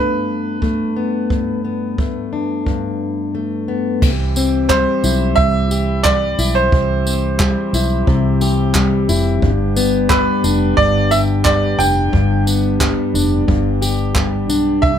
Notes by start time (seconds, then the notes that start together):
Already playing: G2 A3 B3 D4 B4
0.62 A3, kick
0.96 B3
1.30 G2, kick
1.65 B3
1.98 A3, kick
2.33 D4
2.66 G2, kick
3.35 A3
3.68 B3
4.02 C2 E3 C4 E4 G4, kick, crash
4.36 C4, tambourine
4.69 G3 C5, kick, clap
5.04 B1 E4, tambourine
5.36 C2 E5, kick
5.71 G4, tambourine
6.03 G3 D5, kick, clap
6.39 B1 E4, tambourine
6.55 C5
6.72 C2, kick
7.07 C4, tambourine
7.40 G3, kick, clap
7.73 B1 E4, tambourine
8.07 C2 C3, kick
8.41 G4, tambourine
8.75 G3, kick, clap
9.09 F1 E4, tambourine
9.42 G1 G2 B3 D4, kick
9.76 B3, tambourine
10.09 G3 B4, kick, clap
10.44 F1 D4, tambourine
10.77 G1 G2 D5, kick
11.11 G4 E5, tambourine
11.45 G3 D5, kick, clap
11.79 F1 D4 G5, tambourine
12.13 G1 G2, kick
12.47 B3, tambourine
12.81 G3, kick, clap
13.14 F1 D4, tambourine
13.48 G1 G2, kick
13.82 G4, tambourine
14.15 G3, kick, clap
14.49 B1 D4, tambourine
14.81 C2 E3 C4 E4 E5, kick